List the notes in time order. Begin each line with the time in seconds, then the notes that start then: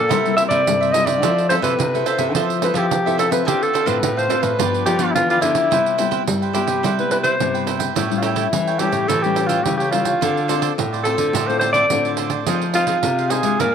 Already playing: A#2 A4
0.09 C3 G3 A#3 E4 A#4 C5 E5, pandeiro
0.25 G3 A#3 E4, pandeiro
0.37 E4 A#4 C5 E5, pandeiro
0.49 C3 E4 A#4 C5 D5 E5, pandeiro
0.67 G2 G3 A#3 E4, pandeiro
0.81 A#4 C5 E5, pandeiro
0.92 G3 A#3 E4 A#4 C5 D#5 E5, pandeiro
0.96 E4
1.06 A#4 C5 D5 E5, pandeiro
1.22 F3 C4 E4 F4 A4 C5 E5, pandeiro
1.38 pandeiro
1.49 C4 E4 F4 A4 C5 E5, pandeiro
1.62 C3 F4 A4 B4 C5 E5, pandeiro
1.79 C3, pandeiro
1.94 C4 E4 A4 C5 E5, pandeiro
2.06 F4 A4 C5 E5, pandeiro
2.18 C3 C4 E4 A4 C5 E5, pandeiro
2.34 F3 F4 A4 C5 E5, pandeiro
2.50 pandeiro
2.62 C4 E4 F4 A4 B4 C5 E5, pandeiro
2.74 F3 F4 A4 C5 E5, pandeiro
2.78 G4
2.90 C3, pandeiro
3.06 C4 E4 A4 C5 E5, pandeiro
3.18 F4 A4 C5 E5, pandeiro
3.31 C4 F4 A4 B4 C5 E5, pandeiro
3.47 D3 D4 G4 A4 C5 F5, pandeiro
3.63 A4, pandeiro
3.73 D4 A4 C5 F5, pandeiro
3.86 A2 C4 D4 F4 A4 B4 C5 F5, pandeiro
4.03 A2, pandeiro
4.17 A4 C5 F5, pandeiro
4.28 C4 D4 F4 A4 C5 F5, pandeiro
4.42 A2 A4 B4 C5 F5, pandeiro
4.59 G2 F3 B3 D4 F4 G4 B4 D5, pandeiro
4.74 pandeiro
4.86 F3 F4 G4 B4 D5, pandeiro
4.98 F3 B3 D4 F4 G4 B4 D5, pandeiro
5.15 D3 E3 F4, pandeiro
5.30 F4 G4 B4 D5, pandeiro
5.41 D3 F3 B3 D4 E4 F4 G4 B4 D5, pandeiro
5.55 G4 B4 D5, pandeiro
5.71 C3 G3 B3 E4 B4 C5 G5, pandeiro
5.86 pandeiro
5.98 G3 B3 E4 B4 C5 G5, pandeiro
6.11 E4 B4 C5 G5, pandeiro
6.27 G2 G3, pandeiro
6.42 B4 C5 G5, pandeiro
6.53 G3 B3 E4 G4 B4 C5 G5, pandeiro
6.67 C3 B4 C5 G5, pandeiro
6.83 C3 G3 E4 B4 C5 G5, pandeiro
6.99 G3 B3 E4 B4, pandeiro
7.10 G3 B3 E4 B4 C5 G5, pandeiro
7.23 E4 B4 C5 G5, pandeiro
7.39 G2 C3 G3 B3 E4, pandeiro
7.54 B4 C5 G5, pandeiro
7.67 E4 B4 C5 G5, pandeiro
7.79 B4 C5 G5, pandeiro
7.95 A2 G3 C#4 E4 G4 A4 C#5 G5, pandeiro
8.10 G3 C#4 E4, pandeiro
8.17 F4
8.22 E4 G4 A4 C#5 G5, pandeiro
8.36 G4 A4 C#5 G5, pandeiro
8.52 E3 G3 C#4 E4, pandeiro
8.67 A4 C#5 G5, pandeiro
8.79 G3 C#4 E4 G4 A4 C#5 G5, pandeiro
8.92 A2 A4 C#5 G5, pandeiro
9.08 A2 E3 G4 A4 C#5 G5, pandeiro
9.22 G3 C#4 E4 G4, pandeiro
9.36 G4 A4 C#5 G5, pandeiro
9.47 F4 G4 A4 C#5 G5, pandeiro
9.64 C#3 E3 G3 C#4 E4 G4, pandeiro
9.77 G4 C#5 G5, pandeiro
9.82 A4
9.92 G3 C#4 E4 F4 G4 A4 C#5 G5, pandeiro
10.05 A4 C#5 G5, pandeiro
10.21 D3 C4 F4 A4 C5 D5, pandeiro
10.37 pandeiro
10.48 C4 F4 A4 C5 D5, pandeiro
10.61 F4 A4 C5 D5, pandeiro
10.78 A2, pandeiro
10.93 A4 C5 D5, pandeiro
11.04 C4 F4 A4 C5 D5, pandeiro
11.17 D3 A4 C5 D5, pandeiro
11.33 A2 D3 F4 A4 C5 D5, pandeiro
11.48 C4 F4 A4 C5, pandeiro
11.60 C4 F4 A4 C5 D5, pandeiro
11.73 C4 F4 A4 C5 D5, pandeiro
11.90 A2 D3 C4 F4 A4, pandeiro
12.05 A4 C5 D5, pandeiro
12.17 F4 A4 C5 D5, pandeiro
12.30 A4 C5 D5, pandeiro
12.46 F3 C4 D#4 G#4 C5 F5, pandeiro
12.62 pandeiro
12.74 C4 D#4 F4 G#4 C5 F5, pandeiro
12.87 C4 D#4 G#4 C5 F5, pandeiro
13.03 C3, pandeiro
13.18 G#4 C5 F5, pandeiro
13.30 C4 D#4 G#4 C5 F5, pandeiro
13.43 C3 G#3 D4 F4 G#4 C5 F5, pandeiro
13.59 A#2 D4 A#4 D5 G#5, pandeiro